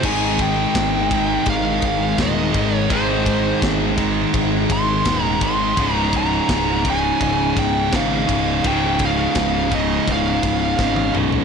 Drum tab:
CC |x---------------|----------------|----------------|----------------|
RD |--x-x-x-x-x-x-x-|x-x-x-x-x-x-x-x-|x-x-x-x-x-x-x-x-|x-x-x-x-x-x-----|
SD |----o-------o---|----o-------o---|----o-------o---|----o-------o---|
T1 |----------------|----------------|----------------|-------------o--|
T2 |----------------|----------------|----------------|--------------o-|
FT |----------------|----------------|----------------|---------------o|
BD |o-o-o-o-o-o-o-o-|o-o-o-o-o-o-o-o-|o-o-o-o-o-o-o-o-|o-o-o-o-o-o-o---|